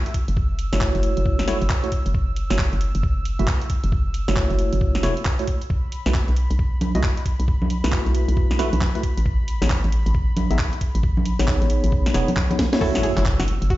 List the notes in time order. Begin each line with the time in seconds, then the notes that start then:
Already playing: E6
0.06 closed hi-hat
0.14 kick, open hi-hat
0.28 F#1, closed hi-hat
0.37 kick
0.59 open hi-hat
0.73 F#1 A3 E4 F#4 C#5, snare, closed hi-hat
0.81 kick, clap
0.95 F#1, closed hi-hat
1.03 open hi-hat
1.17 F#1, closed hi-hat
1.25 kick
1.39 snare
1.48 A3 E4 F#4 C#5, snare, open hi-hat
1.61 F#1, closed hi-hat
1.70 kick, clap
1.84 A3 E4 F#4 C#5, closed hi-hat
1.92 kick, open hi-hat
2.06 F#1, closed hi-hat
2.14 kick
2.36 open hi-hat
2.50 F#1 A3 E4 F#4 C#5, snare, closed hi-hat
2.59 kick, clap
2.73 F#1, closed hi-hat
2.81 open hi-hat
2.95 F#1, closed hi-hat
3.03 kick
3.25 open hi-hat
3.39 F#1 A3 E4 F#4 E5, closed hi-hat
3.47 kick, clap
3.62 closed hi-hat
3.70 kick, open hi-hat
3.84 F#1, closed hi-hat
3.92 kick
4.14 open hi-hat
4.28 F#1 A3 E4 F#4 C#5, snare, closed hi-hat
4.36 kick, clap
4.50 F#1, closed hi-hat
4.59 open hi-hat
4.73 F#1, closed hi-hat
4.81 kick
4.95 snare, closed hi-hat
5.03 E1 A3 E4 F#4 C#5, snare, open hi-hat
5.17 closed hi-hat
5.25 kick, clap
5.39 A3 E4 F#4 C#5, closed hi-hat
5.47 kick, open hi-hat
5.61 closed hi-hat
5.70 B5, kick
5.92 open hi-hat
6.06 B1 A3 E4 F#4 B4, snare, closed hi-hat
6.14 kick, clap
6.28 B1, closed hi-hat
6.36 open hi-hat
6.51 B1, closed hi-hat
6.59 kick
6.81 open hi-hat, high conga
6.95 B1 A3 E4 F#4 D#5, closed hi-hat
7.03 kick, clap
7.17 closed hi-hat
7.26 kick, open hi-hat
7.40 B1, closed hi-hat
7.48 kick
7.62 high conga
7.70 open hi-hat
7.84 B1 A3 E4 F#4 B4, snare, closed hi-hat
7.92 kick, clap
8.06 B1, closed hi-hat
8.15 open hi-hat
8.28 B1, closed hi-hat
8.37 kick
8.51 snare
8.59 A3 E4 F#4 B4, snare, open hi-hat
8.73 B1, closed hi-hat, high conga
8.81 kick, clap
8.95 A3 E4 F#4 B4, closed hi-hat
9.03 kick, open hi-hat
9.17 A1, closed hi-hat
9.26 kick
9.48 open hi-hat
9.62 A1 B3 D#4 G#4 C#5, snare, closed hi-hat
9.70 kick, clap
9.84 A1, closed hi-hat
9.92 open hi-hat
10.06 A1, closed hi-hat
10.14 kick
10.37 open hi-hat, high conga
10.51 A1 B3 D#4 G#4 E5, closed hi-hat
10.59 kick, clap
10.73 closed hi-hat
10.81 kick, open hi-hat
10.95 A1, closed hi-hat
11.03 kick
11.17 high conga
11.26 open hi-hat
11.39 A1 B3 D#4 G#4 C#5, snare, closed hi-hat
11.48 kick, clap
11.62 A1, closed hi-hat
11.70 open hi-hat
11.84 A1, closed hi-hat
11.92 kick
12.06 snare, closed hi-hat
12.14 E1 B3 D#4 G#4 C#5, snare, open hi-hat
12.28 closed hi-hat, high conga
12.37 kick, clap
12.51 B3 D#4 G#4 C#5, closed hi-hat, high conga
12.59 kick, snare, open hi-hat
12.73 A3 E4 F#4 C#5, snare, closed hi-hat
12.81 A3 E4 F#4 A4 C#5 E6, kick, crash, impact
12.95 snare
13.03 G#4, open hi-hat
13.17 F#1 A3 E4 F#4 C#5, clap, closed hi-hat
13.26 kick, clap
13.39 F#1 F#4, snare, closed hi-hat
13.48 open hi-hat
13.62 F#1, closed hi-hat
13.70 F#4, kick, open hi-hat